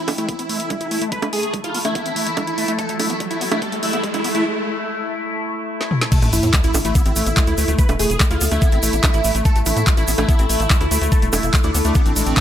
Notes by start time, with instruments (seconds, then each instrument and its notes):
Already playing: synth drone A3 E4, supersaw synth E4, ambient pad E4 A4 A5, riser
0.08 acid bass B3, open hi-hat, high bongo
0.18 acid bass A3, supersaw synth E4, closed hi-hat
0.29 acid bass B3, kick, closed hi-hat
0.39 acid bass C4, closed hi-hat
0.49 acid bass A3, open hi-hat
0.60 acid bass B3, closed hi-hat
0.70 acid bass G#3, kick, closed hi-hat, high bongo
0.81 acid bass E4, closed hi-hat
0.91 acid bass A3, open hi-hat
1.02 acid bass A3, closed hi-hat
1.12 acid bass A3, supersaw synth B4, kick, closed hi-hat
1.22 acid bass A3, closed hi-hat, high bongo
1.33 acid bass A3, supersaw synth G#4, open hi-hat
1.43 acid bass B3, closed hi-hat
1.54 acid bass G#3, kick, closed hi-hat
1.64 acid bass E4, supersaw synth F4, closed hi-hat
1.74 acid bass B3, open hi-hat
1.85 acid bass A3, supersaw synth E4, closed hi-hat, high bongo
1.95 acid bass B3, kick, closed hi-hat
2.06 acid bass C4, closed hi-hat
2.16 acid bass A3, open hi-hat
2.27 acid bass B3, closed hi-hat
2.37 acid bass G#3, kick, closed hi-hat, high bongo
2.47 acid bass E4, closed hi-hat
2.58 acid bass A3, open hi-hat
2.68 acid bass A3, closed hi-hat
2.79 acid bass A3, supersaw synth A4, kick, closed hi-hat
2.89 acid bass A3, closed hi-hat
2.99 acid bass A3, supersaw synth E4, open hi-hat, high bongo
3.10 acid bass B3, closed hi-hat
3.20 acid bass G#3, kick, closed hi-hat
3.31 acid bass E4, supersaw synth E4, closed hi-hat
3.41 acid bass B3, open hi-hat
3.51 acid bass A3, supersaw synth E4, closed hi-hat, high bongo
3.62 acid bass A3, supersaw synth A4, kick, closed hi-hat
3.72 acid bass A3, closed hi-hat
3.83 acid bass A3, supersaw synth E4, open hi-hat
3.93 acid bass B3, closed hi-hat
4.04 acid bass G#3, kick, closed hi-hat
4.14 supersaw synth E4, acid bass E4, closed hi-hat, high bongo
4.24 acid bass B3, open hi-hat
4.35 acid bass A3, supersaw synth E4, closed hi-hat
5.81 snare
5.91 mid tom
6.01 snare
6.12 acid bass A3, synth drone A3 E4, ambient pad E4, supersaw synth A4, kick, closed hi-hat, crash, sub drop, shaker
6.22 analog synth bass A1, acid bass A3, closed hi-hat, high bongo, shaker
6.33 analog synth bass A1, acid bass A3, supersaw synth E4, open hi-hat, shaker
6.41 analog synth bass A2, acid bass B3, ambient pad A4, closed hi-hat, shaker
6.53 acid bass G#3, kick, clap, closed hi-hat, shaker
6.64 analog synth bass A1, acid bass E4, supersaw synth E4, closed hi-hat, shaker
6.74 analog synth bass A1, acid bass B3, open hi-hat, high bongo, shaker
6.85 analog synth bass A1, acid bass A3, supersaw synth E4, closed hi-hat, shaker
6.95 acid bass B3, kick, closed hi-hat, shaker
7.06 analog synth bass A1, acid bass C4, closed hi-hat, shaker
7.16 analog synth bass A1, acid bass A3, open hi-hat, shaker
7.26 analog synth bass A1, acid bass B3, closed hi-hat, shaker
7.37 acid bass G#3, kick, clap, closed hi-hat, high bongo, shaker
7.47 analog synth bass D2, acid bass E4, closed hi-hat, shaker
7.58 analog synth bass D2, acid bass A3, open hi-hat, shaker
7.68 analog synth bass D2, acid bass A3, closed hi-hat, shaker
7.79 acid bass A3, supersaw synth B4, kick, closed hi-hat, shaker
7.89 analog synth bass E1, acid bass A3, closed hi-hat, high bongo, shaker
7.99 analog synth bass E1, acid bass A3, supersaw synth G#4, open hi-hat, shaker
8.10 analog synth bass E1, acid bass B3, closed hi-hat, shaker
8.20 acid bass G#3, kick, clap, closed hi-hat, shaker
8.31 analog synth bass D2, acid bass E4, supersaw synth F4, closed hi-hat, shaker
8.41 analog synth bass D2, acid bass B3, open hi-hat, shaker
8.51 analog synth bass D2, acid bass A3, supersaw synth E4, closed hi-hat, high bongo, shaker
8.62 acid bass B3, kick, closed hi-hat, shaker
8.72 analog synth bass A1, acid bass C4, closed hi-hat, shaker
8.83 analog synth bass A1, acid bass A3, open hi-hat, shaker
8.93 analog synth bass A1, acid bass B3, closed hi-hat, shaker
9.03 acid bass G#3, kick, clap, closed hi-hat, high bongo, shaker
9.14 analog synth bass A1, acid bass E4, closed hi-hat, shaker
9.24 analog synth bass A1, acid bass A3, open hi-hat, shaker
9.35 analog synth bass A1, acid bass A3, closed hi-hat, shaker
9.45 acid bass A3, supersaw synth A4, kick, closed hi-hat, shaker
9.56 analog synth bass A1, acid bass A3, closed hi-hat, shaker
9.66 analog synth bass A1, acid bass A3, supersaw synth E4, open hi-hat, high bongo, shaker
9.77 analog synth bass A2, acid bass B3, closed hi-hat, shaker
9.87 acid bass G#3, kick, clap, closed hi-hat, shaker
9.97 analog synth bass A1, supersaw synth E4, acid bass E4, closed hi-hat, shaker
10.08 analog synth bass A1, acid bass B3, open hi-hat, shaker
10.18 analog synth bass A1, acid bass A3, supersaw synth E4, closed hi-hat, high bongo, shaker
10.29 acid bass B3, kick, closed hi-hat, shaker
10.39 analog synth bass A1, acid bass C4, closed hi-hat, shaker
10.49 analog synth bass A1, acid bass A3, open hi-hat, shaker
10.60 analog synth bass A1, acid bass B3, closed hi-hat, shaker
10.70 acid bass G#3, kick, clap, closed hi-hat, shaker
10.81 analog synth bass D2, acid bass E4, closed hi-hat, high bongo, shaker
10.91 analog synth bass D2, acid bass A3, open hi-hat, shaker
11.02 analog synth bass D2, acid bass A3, closed hi-hat, shaker
11.12 acid bass A3, supersaw synth A4, kick, closed hi-hat, shaker
11.22 analog synth bass E1, acid bass A3, closed hi-hat, shaker
11.33 analog synth bass E1, acid bass A3, supersaw synth E4, open hi-hat, high bongo, shaker
11.43 analog synth bass E1, acid bass B3, closed hi-hat, shaker
11.54 acid bass G#3, kick, clap, closed hi-hat, shaker
11.63 analog synth bass D2, supersaw synth D4, acid bass E4, closed hi-hat, shaker
11.74 analog synth bass D2, acid bass B3, open hi-hat, shaker
11.85 analog synth bass D2, acid bass A3, supersaw synth D4, closed hi-hat, shaker
11.95 acid bass B3, kick, closed hi-hat, high bongo, shaker
12.06 analog synth bass A1, acid bass C4, closed hi-hat, shaker
12.16 analog synth bass A1, acid bass G#3, open hi-hat, shaker
12.26 analog synth bass A1, acid bass C4, closed hi-hat, shaker
12.37 acid bass A3, kick, clap, closed hi-hat